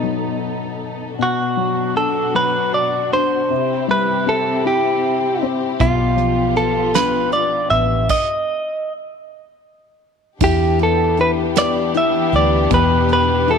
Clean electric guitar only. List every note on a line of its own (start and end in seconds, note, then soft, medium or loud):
0.00 0.38 D#4 medium
1.23 1.97 F#4 medium
1.97 2.36 A4 medium
2.36 2.71 B4 medium
2.74 3.13 D5 medium
3.13 3.86 C5 medium
3.91 4.29 B4 medium
4.29 4.64 A4 medium
4.67 5.48 G4 medium
5.81 6.57 F4 medium
6.57 6.96 A4 medium
6.95 7.33 B4 medium
7.33 7.70 D5 medium
7.70 8.10 E5 medium
8.10 8.93 D#5 medium
10.44 10.78 G4 medium
10.83 11.20 A4 medium
11.21 11.31 B4 medium
11.58 11.93 D5 loud
11.97 12.35 E5 medium
12.36 12.70 D5 medium
12.74 13.12 B4 medium
13.13 13.50 B4 medium
13.51 13.58 A4 medium